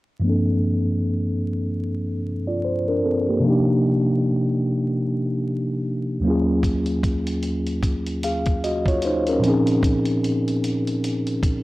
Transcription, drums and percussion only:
6.63 kick, closed hi-hat
6.86 closed hi-hat
7.03 kick, closed hi-hat
7.27 closed hi-hat
7.43 closed hi-hat
7.67 closed hi-hat
7.83 kick, closed hi-hat
8.07 closed hi-hat
8.23 closed hi-hat
8.46 kick, closed hi-hat
8.64 closed hi-hat
8.86 kick, closed hi-hat
9.02 closed hi-hat
9.27 closed hi-hat
9.44 closed hi-hat
9.67 closed hi-hat
9.83 kick, closed hi-hat
10.05 closed hi-hat
10.24 closed hi-hat
10.48 closed hi-hat
10.64 closed hi-hat
10.87 closed hi-hat
11.04 closed hi-hat
11.27 closed hi-hat
11.43 kick, closed hi-hat

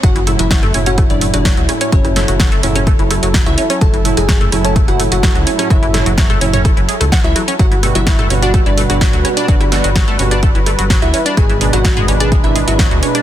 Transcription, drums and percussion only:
0.03 kick, closed hi-hat
0.16 closed hi-hat
0.27 cross-stick, open hi-hat
0.39 closed hi-hat
0.51 kick, snare, closed hi-hat
0.63 cross-stick, closed hi-hat, mid tom
0.74 open hi-hat
0.86 closed hi-hat
0.98 kick, cross-stick, closed hi-hat
1.10 closed hi-hat
1.21 open hi-hat
1.34 cross-stick, closed hi-hat
1.45 kick, snare, closed hi-hat
1.57 closed hi-hat
1.69 cross-stick, open hi-hat
1.81 closed hi-hat
1.92 kick, closed hi-hat
2.05 cross-stick, closed hi-hat
2.16 snare, open hi-hat
2.28 closed hi-hat
2.40 kick, cross-stick, snare, closed hi-hat
2.52 closed hi-hat
2.63 open hi-hat
2.76 cross-stick, closed hi-hat
2.87 kick, closed hi-hat
2.99 closed hi-hat
3.11 cross-stick, open hi-hat
3.23 closed hi-hat
3.34 kick, snare, closed hi-hat
3.46 cross-stick, closed hi-hat
3.58 open hi-hat
3.70 closed hi-hat
3.81 kick, cross-stick, closed hi-hat
3.94 closed hi-hat
4.05 open hi-hat
4.17 cross-stick, closed hi-hat
4.29 kick, snare, closed hi-hat
4.41 closed hi-hat, mid tom
4.52 cross-stick, open hi-hat
4.65 closed hi-hat
4.76 kick, closed hi-hat
4.88 cross-stick, closed hi-hat
5.00 open hi-hat
5.12 closed hi-hat
5.23 kick, cross-stick, snare, closed hi-hat
5.35 closed hi-hat
5.47 open hi-hat
5.59 cross-stick, closed hi-hat
5.70 kick, closed hi-hat
5.83 closed hi-hat
5.94 cross-stick, snare, open hi-hat
6.06 closed hi-hat
6.18 kick, snare, closed hi-hat
6.30 cross-stick, closed hi-hat, mid tom
6.41 open hi-hat
6.54 closed hi-hat, mid tom
6.65 kick, cross-stick, closed hi-hat
6.77 closed hi-hat
6.89 open hi-hat
7.01 cross-stick, closed hi-hat
7.12 kick, snare, closed hi-hat
7.24 closed hi-hat
7.36 cross-stick, open hi-hat
7.48 closed hi-hat
7.59 kick, closed hi-hat
7.72 closed hi-hat
7.83 cross-stick, open hi-hat
7.95 closed hi-hat
8.07 kick, snare, closed hi-hat
8.19 cross-stick, closed hi-hat, mid tom
8.30 open hi-hat
8.43 closed hi-hat
8.54 kick, cross-stick, closed hi-hat
8.66 closed hi-hat
8.78 open hi-hat
8.90 cross-stick, closed hi-hat
9.01 kick, snare, closed hi-hat
9.13 closed hi-hat
9.25 cross-stick, open hi-hat
9.37 closed hi-hat
9.48 kick, closed hi-hat
9.61 cross-stick, closed hi-hat
9.72 snare, open hi-hat
9.84 closed hi-hat
9.96 kick, cross-stick, snare, closed hi-hat
10.08 closed hi-hat
10.19 open hi-hat
10.31 cross-stick, closed hi-hat
10.43 kick, closed hi-hat
10.55 closed hi-hat
10.66 cross-stick, open hi-hat
10.79 closed hi-hat
10.90 kick, snare, closed hi-hat
11.02 cross-stick, closed hi-hat
11.14 open hi-hat
11.26 closed hi-hat
11.37 kick, cross-stick, closed hi-hat
11.50 closed hi-hat
11.61 open hi-hat
11.73 cross-stick, closed hi-hat
11.85 kick, snare, closed hi-hat
11.97 closed hi-hat, mid tom
12.08 cross-stick, open hi-hat
12.20 closed hi-hat
12.32 kick, closed hi-hat
12.44 cross-stick, closed hi-hat
12.56 open hi-hat
12.68 closed hi-hat
12.79 kick, cross-stick, snare, closed hi-hat
12.91 closed hi-hat
13.03 open hi-hat
13.15 cross-stick, closed hi-hat

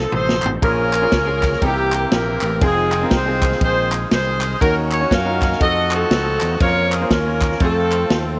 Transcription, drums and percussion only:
0.12 mid tom
0.29 snare
0.42 clap, floor tom
0.62 kick, ride
0.93 clap, ride
1.12 kick, snare, ride
1.43 kick, snare, clap, ride
1.53 snare
1.62 kick, ride
1.92 clap, ride
2.12 snare, ride
2.41 clap, ride
2.61 kick, ride
2.92 clap, ride
3.11 kick, snare, ride
3.42 kick, clap, ride
3.52 snare
3.61 kick, ride
3.92 clap, ride
4.11 snare, ride
4.41 clap, ride
4.61 kick, ride
4.91 clap, ride
5.11 kick, snare, ride
5.41 kick, snare, clap, ride
5.52 snare
5.61 kick, ride
5.91 clap, ride
6.11 snare, ride
6.40 clap, ride
6.60 kick, ride
6.92 clap, ride
7.11 kick, snare, ride
7.41 kick, snare, clap, ride
7.52 snare
7.60 kick, ride
7.91 clap, ride
8.10 snare, ride

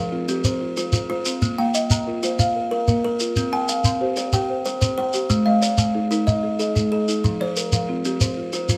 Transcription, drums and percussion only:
0.28 shekere
0.44 shekere
0.77 shekere
0.92 shekere
1.25 shekere
1.42 shekere
1.74 shekere
1.90 shekere
2.23 shekere
2.39 shekere
2.88 shekere
3.20 shekere
3.36 shekere
3.69 shekere
3.84 shekere
4.17 shekere
4.33 shekere
4.65 shekere
4.82 shekere
5.13 shekere
5.30 shekere
5.62 shekere
5.78 shekere
6.12 shekere
6.28 shekere
6.60 shekere
6.76 shekere
7.08 shekere
7.24 shekere
7.56 shekere
7.72 shekere
8.05 shekere
8.21 shekere
8.53 shekere
8.69 shekere

